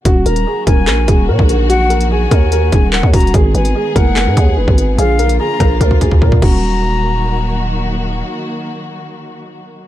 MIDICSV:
0, 0, Header, 1, 6, 480
1, 0, Start_track
1, 0, Key_signature, -6, "minor"
1, 0, Tempo, 410959
1, 62, Time_signature, 4, 2, 24, 8
1, 11533, End_track
2, 0, Start_track
2, 0, Title_t, "Flute"
2, 0, Program_c, 0, 73
2, 299, Note_on_c, 0, 82, 82
2, 751, Note_off_c, 0, 82, 0
2, 781, Note_on_c, 0, 80, 87
2, 1458, Note_off_c, 0, 80, 0
2, 1984, Note_on_c, 0, 78, 113
2, 2434, Note_off_c, 0, 78, 0
2, 2466, Note_on_c, 0, 80, 86
2, 3377, Note_off_c, 0, 80, 0
2, 3424, Note_on_c, 0, 78, 80
2, 3651, Note_off_c, 0, 78, 0
2, 3658, Note_on_c, 0, 82, 93
2, 3888, Note_off_c, 0, 82, 0
2, 4140, Note_on_c, 0, 80, 76
2, 4592, Note_off_c, 0, 80, 0
2, 4618, Note_on_c, 0, 78, 85
2, 5296, Note_off_c, 0, 78, 0
2, 5820, Note_on_c, 0, 77, 105
2, 6272, Note_off_c, 0, 77, 0
2, 6298, Note_on_c, 0, 82, 101
2, 6751, Note_off_c, 0, 82, 0
2, 7502, Note_on_c, 0, 82, 98
2, 9135, Note_off_c, 0, 82, 0
2, 11533, End_track
3, 0, Start_track
3, 0, Title_t, "Grand piano"
3, 0, Program_c, 1, 0
3, 64, Note_on_c, 1, 66, 101
3, 268, Note_off_c, 1, 66, 0
3, 303, Note_on_c, 1, 70, 79
3, 507, Note_off_c, 1, 70, 0
3, 547, Note_on_c, 1, 68, 85
3, 750, Note_off_c, 1, 68, 0
3, 781, Note_on_c, 1, 70, 79
3, 986, Note_off_c, 1, 70, 0
3, 1020, Note_on_c, 1, 70, 90
3, 1225, Note_off_c, 1, 70, 0
3, 1264, Note_on_c, 1, 68, 87
3, 1468, Note_off_c, 1, 68, 0
3, 1503, Note_on_c, 1, 70, 85
3, 1707, Note_off_c, 1, 70, 0
3, 1745, Note_on_c, 1, 70, 69
3, 1948, Note_off_c, 1, 70, 0
3, 1979, Note_on_c, 1, 66, 104
3, 2185, Note_off_c, 1, 66, 0
3, 2219, Note_on_c, 1, 70, 79
3, 2425, Note_off_c, 1, 70, 0
3, 2466, Note_on_c, 1, 68, 85
3, 2669, Note_off_c, 1, 68, 0
3, 2703, Note_on_c, 1, 70, 91
3, 2907, Note_off_c, 1, 70, 0
3, 2946, Note_on_c, 1, 70, 88
3, 3149, Note_off_c, 1, 70, 0
3, 3182, Note_on_c, 1, 68, 85
3, 3387, Note_off_c, 1, 68, 0
3, 3418, Note_on_c, 1, 70, 77
3, 3624, Note_off_c, 1, 70, 0
3, 3663, Note_on_c, 1, 66, 85
3, 3867, Note_off_c, 1, 66, 0
3, 3905, Note_on_c, 1, 68, 99
3, 4108, Note_off_c, 1, 68, 0
3, 4142, Note_on_c, 1, 71, 76
3, 4346, Note_off_c, 1, 71, 0
3, 4385, Note_on_c, 1, 68, 89
3, 4588, Note_off_c, 1, 68, 0
3, 4620, Note_on_c, 1, 70, 91
3, 4825, Note_off_c, 1, 70, 0
3, 4864, Note_on_c, 1, 70, 84
3, 5068, Note_off_c, 1, 70, 0
3, 5103, Note_on_c, 1, 68, 90
3, 5307, Note_off_c, 1, 68, 0
3, 5339, Note_on_c, 1, 71, 87
3, 5544, Note_off_c, 1, 71, 0
3, 5586, Note_on_c, 1, 71, 72
3, 5789, Note_off_c, 1, 71, 0
3, 5824, Note_on_c, 1, 68, 104
3, 6027, Note_off_c, 1, 68, 0
3, 6065, Note_on_c, 1, 70, 82
3, 6268, Note_off_c, 1, 70, 0
3, 6305, Note_on_c, 1, 68, 89
3, 6508, Note_off_c, 1, 68, 0
3, 6540, Note_on_c, 1, 70, 86
3, 6746, Note_off_c, 1, 70, 0
3, 6785, Note_on_c, 1, 70, 97
3, 6988, Note_off_c, 1, 70, 0
3, 7025, Note_on_c, 1, 68, 87
3, 7228, Note_off_c, 1, 68, 0
3, 7266, Note_on_c, 1, 70, 85
3, 7469, Note_off_c, 1, 70, 0
3, 7501, Note_on_c, 1, 66, 82
3, 9134, Note_off_c, 1, 66, 0
3, 11533, End_track
4, 0, Start_track
4, 0, Title_t, "String section"
4, 0, Program_c, 2, 48
4, 59, Note_on_c, 2, 51, 86
4, 59, Note_on_c, 2, 54, 77
4, 59, Note_on_c, 2, 58, 78
4, 60, Note_on_c, 2, 66, 95
4, 3862, Note_off_c, 2, 54, 0
4, 3862, Note_off_c, 2, 58, 0
4, 3862, Note_off_c, 2, 66, 0
4, 3899, Note_on_c, 2, 59, 81
4, 3900, Note_on_c, 2, 56, 80
4, 3900, Note_on_c, 2, 68, 97
4, 5774, Note_off_c, 2, 51, 0
4, 5801, Note_off_c, 2, 56, 0
4, 5801, Note_off_c, 2, 59, 0
4, 5801, Note_off_c, 2, 68, 0
4, 5819, Note_on_c, 2, 65, 92
4, 5820, Note_on_c, 2, 50, 87
4, 5820, Note_on_c, 2, 53, 77
4, 5820, Note_on_c, 2, 58, 76
4, 7483, Note_off_c, 2, 65, 0
4, 7484, Note_off_c, 2, 50, 0
4, 7484, Note_off_c, 2, 53, 0
4, 7484, Note_off_c, 2, 58, 0
4, 7501, Note_on_c, 2, 51, 84
4, 7501, Note_on_c, 2, 58, 74
4, 7501, Note_on_c, 2, 66, 88
4, 7503, Note_on_c, 2, 54, 75
4, 11533, Note_off_c, 2, 51, 0
4, 11533, Note_off_c, 2, 54, 0
4, 11533, Note_off_c, 2, 58, 0
4, 11533, Note_off_c, 2, 66, 0
4, 11533, End_track
5, 0, Start_track
5, 0, Title_t, "808-style bass"
5, 0, Program_c, 3, 38
5, 61, Note_on_c, 3, 27, 119
5, 292, Note_off_c, 3, 27, 0
5, 302, Note_on_c, 3, 27, 105
5, 532, Note_off_c, 3, 27, 0
5, 782, Note_on_c, 3, 27, 105
5, 1021, Note_on_c, 3, 34, 96
5, 1039, Note_off_c, 3, 27, 0
5, 1249, Note_off_c, 3, 34, 0
5, 1263, Note_on_c, 3, 27, 103
5, 1501, Note_on_c, 3, 46, 100
5, 1519, Note_off_c, 3, 27, 0
5, 1615, Note_off_c, 3, 46, 0
5, 1622, Note_on_c, 3, 34, 105
5, 2658, Note_off_c, 3, 34, 0
5, 2701, Note_on_c, 3, 39, 102
5, 3162, Note_off_c, 3, 39, 0
5, 3183, Note_on_c, 3, 27, 101
5, 3528, Note_off_c, 3, 27, 0
5, 3542, Note_on_c, 3, 39, 101
5, 3657, Note_off_c, 3, 39, 0
5, 3661, Note_on_c, 3, 27, 108
5, 3892, Note_off_c, 3, 27, 0
5, 3901, Note_on_c, 3, 32, 115
5, 4132, Note_off_c, 3, 32, 0
5, 4140, Note_on_c, 3, 32, 106
5, 4371, Note_off_c, 3, 32, 0
5, 4622, Note_on_c, 3, 30, 105
5, 4981, Note_on_c, 3, 44, 99
5, 4998, Note_off_c, 3, 30, 0
5, 5095, Note_off_c, 3, 44, 0
5, 5103, Note_on_c, 3, 39, 105
5, 5341, Note_on_c, 3, 30, 99
5, 5359, Note_off_c, 3, 39, 0
5, 5455, Note_off_c, 3, 30, 0
5, 5463, Note_on_c, 3, 32, 101
5, 5808, Note_off_c, 3, 32, 0
5, 5821, Note_on_c, 3, 34, 109
5, 6062, Note_on_c, 3, 35, 100
5, 6079, Note_off_c, 3, 34, 0
5, 6180, Note_on_c, 3, 34, 105
5, 6198, Note_off_c, 3, 35, 0
5, 6295, Note_off_c, 3, 34, 0
5, 6542, Note_on_c, 3, 34, 104
5, 6772, Note_off_c, 3, 34, 0
5, 6781, Note_on_c, 3, 38, 110
5, 7261, Note_on_c, 3, 46, 100
5, 7279, Note_off_c, 3, 38, 0
5, 7489, Note_off_c, 3, 46, 0
5, 7501, Note_on_c, 3, 27, 111
5, 9615, Note_off_c, 3, 27, 0
5, 11533, End_track
6, 0, Start_track
6, 0, Title_t, "Drums"
6, 61, Note_on_c, 9, 36, 113
6, 61, Note_on_c, 9, 42, 89
6, 178, Note_off_c, 9, 36, 0
6, 178, Note_off_c, 9, 42, 0
6, 301, Note_on_c, 9, 42, 73
6, 418, Note_off_c, 9, 42, 0
6, 421, Note_on_c, 9, 42, 62
6, 538, Note_off_c, 9, 42, 0
6, 781, Note_on_c, 9, 42, 83
6, 782, Note_on_c, 9, 36, 104
6, 898, Note_off_c, 9, 36, 0
6, 898, Note_off_c, 9, 42, 0
6, 1021, Note_on_c, 9, 39, 115
6, 1021, Note_on_c, 9, 42, 79
6, 1137, Note_off_c, 9, 39, 0
6, 1138, Note_off_c, 9, 42, 0
6, 1261, Note_on_c, 9, 42, 78
6, 1263, Note_on_c, 9, 36, 103
6, 1378, Note_off_c, 9, 42, 0
6, 1379, Note_off_c, 9, 36, 0
6, 1622, Note_on_c, 9, 36, 94
6, 1739, Note_off_c, 9, 36, 0
6, 1742, Note_on_c, 9, 42, 85
6, 1859, Note_off_c, 9, 42, 0
6, 1982, Note_on_c, 9, 42, 93
6, 2099, Note_off_c, 9, 42, 0
6, 2222, Note_on_c, 9, 42, 71
6, 2339, Note_off_c, 9, 42, 0
6, 2342, Note_on_c, 9, 42, 66
6, 2459, Note_off_c, 9, 42, 0
6, 2702, Note_on_c, 9, 36, 104
6, 2702, Note_on_c, 9, 42, 79
6, 2818, Note_off_c, 9, 36, 0
6, 2818, Note_off_c, 9, 42, 0
6, 2942, Note_on_c, 9, 42, 82
6, 3059, Note_off_c, 9, 42, 0
6, 3181, Note_on_c, 9, 42, 81
6, 3182, Note_on_c, 9, 36, 102
6, 3298, Note_off_c, 9, 42, 0
6, 3299, Note_off_c, 9, 36, 0
6, 3421, Note_on_c, 9, 39, 117
6, 3538, Note_off_c, 9, 39, 0
6, 3542, Note_on_c, 9, 36, 90
6, 3659, Note_off_c, 9, 36, 0
6, 3661, Note_on_c, 9, 36, 102
6, 3662, Note_on_c, 9, 42, 79
6, 3662, Note_on_c, 9, 46, 64
6, 3742, Note_off_c, 9, 42, 0
6, 3742, Note_on_c, 9, 42, 64
6, 3778, Note_off_c, 9, 36, 0
6, 3779, Note_off_c, 9, 46, 0
6, 3821, Note_off_c, 9, 42, 0
6, 3821, Note_on_c, 9, 42, 47
6, 3901, Note_on_c, 9, 36, 120
6, 3902, Note_off_c, 9, 42, 0
6, 3902, Note_on_c, 9, 42, 92
6, 4018, Note_off_c, 9, 36, 0
6, 4018, Note_off_c, 9, 42, 0
6, 4142, Note_on_c, 9, 42, 73
6, 4259, Note_off_c, 9, 42, 0
6, 4262, Note_on_c, 9, 42, 64
6, 4379, Note_off_c, 9, 42, 0
6, 4622, Note_on_c, 9, 36, 107
6, 4623, Note_on_c, 9, 42, 77
6, 4739, Note_off_c, 9, 36, 0
6, 4740, Note_off_c, 9, 42, 0
6, 4862, Note_on_c, 9, 39, 118
6, 4862, Note_on_c, 9, 42, 78
6, 4979, Note_off_c, 9, 39, 0
6, 4979, Note_off_c, 9, 42, 0
6, 5103, Note_on_c, 9, 36, 98
6, 5103, Note_on_c, 9, 42, 79
6, 5220, Note_off_c, 9, 36, 0
6, 5220, Note_off_c, 9, 42, 0
6, 5463, Note_on_c, 9, 36, 94
6, 5580, Note_off_c, 9, 36, 0
6, 5583, Note_on_c, 9, 42, 84
6, 5700, Note_off_c, 9, 42, 0
6, 5823, Note_on_c, 9, 42, 91
6, 5940, Note_off_c, 9, 42, 0
6, 6063, Note_on_c, 9, 42, 73
6, 6180, Note_off_c, 9, 42, 0
6, 6183, Note_on_c, 9, 42, 64
6, 6299, Note_off_c, 9, 42, 0
6, 6542, Note_on_c, 9, 36, 105
6, 6542, Note_on_c, 9, 42, 77
6, 6543, Note_on_c, 9, 37, 74
6, 6659, Note_off_c, 9, 36, 0
6, 6659, Note_off_c, 9, 42, 0
6, 6660, Note_off_c, 9, 37, 0
6, 6782, Note_on_c, 9, 36, 63
6, 6782, Note_on_c, 9, 42, 80
6, 6899, Note_off_c, 9, 36, 0
6, 6899, Note_off_c, 9, 42, 0
6, 6901, Note_on_c, 9, 36, 62
6, 7018, Note_off_c, 9, 36, 0
6, 7022, Note_on_c, 9, 36, 79
6, 7022, Note_on_c, 9, 42, 82
6, 7138, Note_off_c, 9, 36, 0
6, 7138, Note_off_c, 9, 42, 0
6, 7142, Note_on_c, 9, 36, 73
6, 7258, Note_off_c, 9, 36, 0
6, 7261, Note_on_c, 9, 36, 90
6, 7378, Note_off_c, 9, 36, 0
6, 7381, Note_on_c, 9, 36, 87
6, 7498, Note_off_c, 9, 36, 0
6, 7501, Note_on_c, 9, 36, 105
6, 7501, Note_on_c, 9, 49, 90
6, 7618, Note_off_c, 9, 36, 0
6, 7618, Note_off_c, 9, 49, 0
6, 11533, End_track
0, 0, End_of_file